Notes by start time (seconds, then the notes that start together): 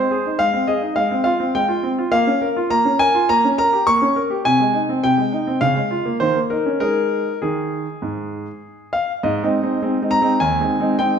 Already playing: C4 C5
0.11 G#4
0.26 D#4
0.39 G#3 F5
0.53 C4
0.67 G#4 D#5
0.82 D#4
0.96 G#3 F5
1.11 C4
1.24 F4 F5
1.40 C4
1.55 G#3 G5
1.68 F4
1.83 C4
1.99 F4
2.12 A#3 F5
2.27 C#4
2.41 A#4
2.57 F4
2.70 A#3 A#5
2.85 C#4
2.99 A#4 G#5
3.15 F4
3.29 A#3 A#5
3.44 C#4
3.58 A#4 A#5
3.73 G4
3.87 A#3 C#6
4.02 C#4
4.16 A#4
4.30 G4
4.45 C3 G#5
4.60 G#3
4.74 D#4
4.89 C4
5.04 C3 G5
5.18 G#3
5.32 D#4
5.47 C4
5.61 C#3 F5
5.76 G#3
5.91 F4
6.06 A#3
6.20 D#3 C5
6.36 A#3
6.50 D#4 A#4
6.66 C#4
6.80 G#3 D#4 G#4 A#4
7.42 D#3 G#4
8.02 G#2
8.93 F5
9.23 G#2 D#5
9.43 G#3 C4 D#4
9.63 G#3 C4 D#4
9.82 G#3 C4 D#4
10.02 G#3 C4 D#4
10.11 A#5
10.22 G#3 C4 D#4
10.40 D#2 G#5
10.61 G#3 C4 D#4
10.80 G#3 C4 D#4
10.99 G#3 C4 D#4 G5